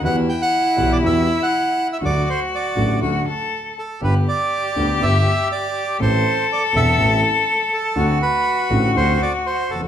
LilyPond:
<<
  \new Staff \with { instrumentName = "Bandoneon" } { \time 4/4 \key d \mixolydian \tempo 4 = 122 fis''8 g''16 fis''4 d''16 e''8. fis''4 e''16 | d''8 c''8 d''4 r4. a'8 | b'8 d''4. e''4 d''4 | c''4 d''8 e''4 r4 a'8~ |
a'8 b'4. c''8 d''8 c''8 a'8 | }
  \new Staff \with { instrumentName = "Cello" } { \time 4/4 \key d \mixolydian e'1 | fis'2 fis'8 a'4 r8 | g'1 | a'1 |
fis'1 | }
  \new Staff \with { instrumentName = "Grand piano" } { \clef bass \time 4/4 \key d \mixolydian <e, e g b fis'>8 r4 <b,, b, e g b fis'>8 <e, e g b fis'>8 r4. | <d, d fis a fis'>8 r4 <a,, a, d fis a fis'>8 <d, d fis a fis'>8 r4. | <g,, g, d g b g'>8 r4 <d, d g b g'>8 <g,, g, d g b g'>8 r4. | <a,, a, e a c' a'>8 r4 <e,, e, e a c' a'>8 <a,, a, e a c' a'>8 r4. |
<d, d a c' fis'>8 r4 <a,, a, d a c' fis'>8 <d, d a c' fis'>8 r4 r32 e,32 f,32 r32 | }
  \new Staff \with { instrumentName = "Double bass" } { \clef bass \time 4/4 \key d \mixolydian e,8 r4 b,,8 e,8 r4. | d,8 r4 a,,8 d,8 r4. | g,,8 r4 d,8 g,,8 r4. | a,,8 r4 e,,8 a,,8 r4. |
d,8 r4 a,,8 d,8 r4 f,,8 | }
>>